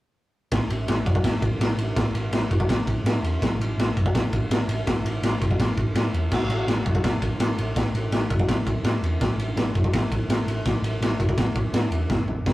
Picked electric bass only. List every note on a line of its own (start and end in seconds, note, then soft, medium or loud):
0.52 0.65 A1 medium
0.70 0.83 A1 loud
0.88 1.01 A1 medium
1.06 1.19 F#2 medium
1.24 1.37 A1 medium
1.42 1.55 A1 medium
1.60 1.73 A1 medium
1.77 1.91 A1 medium
1.96 2.09 A1 medium
2.14 2.27 A1 loud
2.32 2.45 A1 medium
2.51 2.64 F#1 medium
2.69 2.82 A1 medium
2.87 3.00 A1 medium
3.04 3.17 A2 medium
3.22 3.35 E2 medium
3.42 3.55 A1 medium
3.59 3.72 A1 loud
3.77 3.91 A1 loud
3.97 4.09 F#2 medium
4.15 4.27 A1 medium
4.33 4.46 A1 medium
4.50 4.63 A1 medium
4.68 4.81 A1 medium
4.87 5.00 A1 medium
5.04 5.17 A1 loud
5.22 5.36 A1 medium
5.41 5.54 F#1 medium
5.60 5.72 A1 medium
5.78 5.90 A1 medium
5.95 6.08 A2 medium
6.13 6.26 E2 medium
6.32 6.45 A1 medium
6.48 6.62 A1 loud
6.67 6.80 A1 loud
6.86 6.99 F#2 medium
7.04 7.17 A1 medium
7.22 7.35 A1 medium
7.39 7.52 A1 loud
7.58 7.71 A1 medium
7.76 7.89 A1 medium
7.93 8.07 A1 loud
8.11 8.25 A1 loud
8.30 8.43 F#1 medium
8.48 8.61 A1 medium
8.66 8.79 A1 medium
8.83 8.97 A2 loud
9.02 9.15 E2 medium
9.21 9.34 A1 medium
9.37 9.51 A1 medium
9.56 9.69 A1 medium
9.75 9.88 F#2 medium
9.93 10.06 A1 medium
10.11 10.24 A1 loud
10.28 10.42 A1 loud
10.46 10.60 A1 medium
10.65 10.78 A1 medium
10.82 10.96 A1 medium
11.00 11.14 A1 medium
11.20 11.32 F#1 medium
11.37 11.50 A1 medium
11.55 11.68 A1 medium
11.73 11.86 A2 medium
11.91 12.04 E2 medium
12.10 12.41 A1 medium
12.46 12.53 A1 loud